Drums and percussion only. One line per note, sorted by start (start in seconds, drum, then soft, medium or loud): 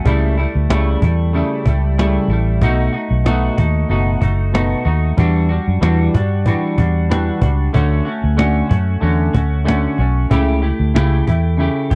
0.05 cajon bass medium
0.39 cajon slap soft
0.56 cajon slap soft
0.70 cajon slap loud
1.02 cajon bass medium
1.20 cajon slap soft
1.35 cajon slap soft
1.66 cajon bass medium
1.82 cajon slap soft
1.99 cajon slap medium
2.28 cajon slap soft
2.47 cajon slap soft
2.61 cajon bass medium
2.94 cajon slap soft
3.13 cajon slap soft
3.26 cajon slap medium
3.58 cajon bass medium
3.90 cajon slap soft
4.22 cajon bass medium
4.38 cajon slap soft
4.55 cajon slap medium
4.84 cajon slap soft
5.04 cajon slap soft
5.18 cajon bass medium
5.51 cajon slap soft
5.69 cajon slap soft
5.83 cajon slap medium
6.15 cajon bass medium
6.32 cajon slap soft
6.46 cajon bass medium
6.78 cajon bass medium
7.11 cajon slap loud
7.42 cajon bass medium
7.60 cajon slap soft
7.74 cajon bass loud
8.07 cajon slap soft
8.25 cajon slap soft
8.39 cajon slap medium
8.71 cajon bass medium
8.88 cajon slap soft
9.03 cajon slap soft
9.34 cajon bass medium
9.68 cajon slap medium
9.98 cajon slap soft
10.17 cajon slap soft
10.31 cajon bass medium
10.64 cajon slap soft
10.82 cajon slap soft
10.96 cajon slap loud
11.28 cajon bass medium
11.45 cajon slap soft
11.61 cajon slap soft
11.91 cajon bass medium